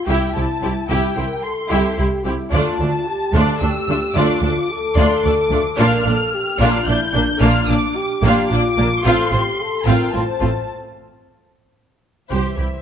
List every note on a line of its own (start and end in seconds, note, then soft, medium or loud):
0.08 0.16 C2 medium
0.08 0.16 C2 soft
0.08 0.88 E4 soft
0.08 0.33 E4 soft
0.08 0.33 G4 soft
0.08 0.34 E5 soft
0.08 0.34 G5 soft
0.35 0.43 C2 soft
0.35 0.44 C2 soft
0.35 0.44 E4 soft
0.35 0.44 G4 soft
0.35 0.45 C5 soft
0.35 0.89 A5 medium
0.62 0.71 C2 soft
0.62 0.70 C4 soft
0.62 0.72 E4 soft
0.62 0.70 G4 soft
0.62 0.72 G4 soft
0.89 0.98 C2 soft
0.89 1.15 E4 soft
0.89 1.16 G4 soft
0.89 1.15 G4 soft
0.89 1.15 G4 medium
0.89 1.15 E5 soft
0.89 1.42 G5 medium
1.16 1.25 C2 soft
1.16 1.26 C2 soft
1.16 1.25 E4 soft
1.16 1.26 E4 soft
1.16 1.25 G4 soft
1.16 1.44 A#4 soft
1.16 1.24 C5 soft
1.43 1.98 A4 soft
1.43 1.98 C6 medium
1.70 1.79 C2 soft
1.70 1.79 C2 medium
1.70 1.96 E4 medium
1.70 1.96 G4 soft
1.70 1.97 G4 medium
1.70 1.96 E5 soft
1.98 2.06 C2 soft
1.98 2.07 C2 soft
1.98 2.06 E4 soft
1.98 2.06 G4 soft
1.98 2.25 G4 soft
1.98 2.06 C5 soft
2.24 2.33 C2 soft
2.24 2.33 C4 soft
2.24 2.52 E4 soft
2.24 2.33 E4 soft
2.24 2.33 G4 soft
2.52 2.60 D2 soft
2.52 2.61 D2 soft
2.52 2.79 A3 medium
2.52 2.79 D4 soft
2.52 3.06 F4 soft
2.52 2.78 F4 soft
2.52 2.78 D5 medium
2.52 3.58 A5 medium
2.80 2.88 D2 soft
2.80 2.89 A3 soft
2.80 2.88 D4 soft
2.80 2.89 D4 soft
2.80 2.88 A4 soft
3.07 3.34 G4 soft
3.33 3.41 D2 medium
3.33 3.42 D2 soft
3.33 3.59 A3 soft
3.33 3.60 D4 medium
3.33 3.60 F4 soft
3.33 3.61 A4 soft
3.33 3.60 D5 medium
3.61 3.69 D2 soft
3.61 3.70 D2 soft
3.61 3.70 A3 soft
3.61 3.70 D4 soft
3.61 3.71 D4 soft
3.61 4.16 G4 medium
3.61 3.71 A4 soft
3.61 4.16 E6 medium
3.88 3.96 D2 soft
3.88 3.97 D2 soft
3.88 3.97 A3 soft
3.88 3.98 A3 soft
3.88 3.97 D4 soft
3.88 3.98 F4 soft
4.15 4.23 D2 medium
4.15 4.24 D2 medium
4.15 4.41 A3 medium
4.15 4.41 D4 medium
4.15 4.70 F4 soft
4.15 4.41 F4 medium
4.15 4.41 D5 medium
4.15 4.97 D6 medium
4.42 4.50 D2 soft
4.42 4.51 D2 soft
4.42 4.51 A3 soft
4.42 4.51 D4 soft
4.42 4.52 D4 soft
4.42 4.51 A4 soft
4.70 5.79 A4 medium
4.96 5.04 D2 medium
4.96 5.05 D2 medium
4.96 5.23 A3 soft
4.96 5.23 D4 medium
4.96 5.23 F4 medium
4.96 5.23 D5 medium
4.96 5.24 C6 medium
5.24 5.32 D2 soft
5.24 5.32 A3 soft
5.24 5.33 D4 soft
5.24 5.34 A4 soft
5.24 5.79 D6 medium
5.50 5.58 D2 soft
5.50 5.59 D2 soft
5.50 5.60 A3 medium
5.50 5.61 A3 soft
5.50 5.60 D4 soft
5.50 5.61 F4 medium
5.77 5.86 A#1 medium
5.77 5.86 A#2 medium
5.77 6.04 A#3 medium
5.77 6.04 D4 medium
5.77 6.05 F4 medium
5.77 6.05 A#4 medium
5.77 6.05 F5 medium
5.77 6.85 F6 medium
6.05 6.13 A#1 soft
6.05 6.14 A#2 soft
6.05 6.14 A#3 soft
6.05 6.14 D4 soft
6.05 6.15 D4 soft
6.05 6.32 A4 medium
6.05 6.15 D5 soft
6.34 6.61 G4 medium
6.60 6.68 A#1 medium
6.60 6.68 A#2 medium
6.60 6.86 A#3 medium
6.60 6.86 D4 medium
6.60 6.87 F4 medium
6.60 6.86 F4 medium
6.60 6.86 F5 medium
6.87 6.95 A#1 soft
6.87 6.96 A#2 soft
6.87 6.96 A#3 soft
6.87 6.96 D4 soft
6.87 6.96 D4 medium
6.87 7.14 E4 medium
6.87 6.96 D5 soft
6.87 7.42 G6 medium
7.14 7.22 A#1 soft
7.14 7.22 A#2 medium
7.14 7.23 A#3 soft
7.14 7.24 A#3 medium
7.14 7.22 D4 medium
7.14 7.96 D4 medium
7.14 7.24 A#4 soft
7.41 7.49 A#1 medium
7.41 7.49 A#2 medium
7.41 7.67 A#3 medium
7.41 7.67 D4 medium
7.41 7.68 F4 medium
7.41 7.68 F5 medium
7.41 7.69 F6 medium
7.68 7.76 A#1 soft
7.68 7.77 A#2 soft
7.68 7.77 A#3 soft
7.68 7.77 D4 soft
7.68 7.79 D4 soft
7.68 7.79 D5 soft
7.68 8.24 D6 medium
7.95 8.50 G4 medium
8.23 8.31 A#1 medium
8.23 8.31 A#2 medium
8.23 8.49 A#3 medium
8.23 8.49 D4 medium
8.23 8.50 F4 medium
8.23 8.50 F5 medium
8.50 8.58 A#1 soft
8.50 8.58 A#2 soft
8.50 8.59 A#3 medium
8.50 8.60 D4 soft
8.50 9.05 F4 medium
8.50 8.61 D5 medium
8.50 9.01 D6 medium
8.78 8.86 A#1 soft
8.78 8.86 A#2 soft
8.78 8.86 A#3 medium
8.78 8.88 A#3 medium
8.78 8.86 D4 medium
8.78 8.88 A#4 soft
9.03 9.13 A1 medium
9.03 9.14 A2 medium
9.03 9.30 C4 medium
9.03 9.30 F4 medium
9.03 9.31 F4 medium
9.03 9.32 A4 soft
9.03 9.31 F5 medium
9.03 9.85 C6 medium
9.32 9.40 A1 soft
9.32 9.41 A2 soft
9.32 9.40 C4 soft
9.32 9.42 C4 soft
9.32 9.40 F4 soft
9.32 9.59 G4 medium
9.32 9.41 C5 soft
9.61 9.87 A4 medium
9.86 9.94 A1 medium
9.86 9.95 A2 medium
9.86 10.12 C4 medium
9.86 10.12 F4 medium
9.86 10.14 A#4 medium
9.86 10.12 F5 medium
9.86 10.13 G5 medium
10.12 10.21 A1 soft
10.12 10.23 A2 soft
10.12 10.21 C4 soft
10.12 10.23 C4 soft
10.12 10.21 F4 soft
10.12 10.68 C5 medium
10.12 10.22 C5 medium
10.12 10.67 A5 medium
10.40 10.49 A1 soft
10.40 10.49 A2 soft
10.40 10.50 A3 soft
10.40 10.48 C4 soft
10.40 10.48 F4 soft
10.40 10.50 A4 soft
12.30 12.40 C2 soft
12.30 12.82 E3 soft
12.30 12.56 G4 soft
12.30 12.82 C5 soft
12.30 12.57 C5 soft
12.30 12.82 E5 soft
12.57 12.67 C2 soft
12.57 12.65 E4 soft
12.57 12.66 G4 soft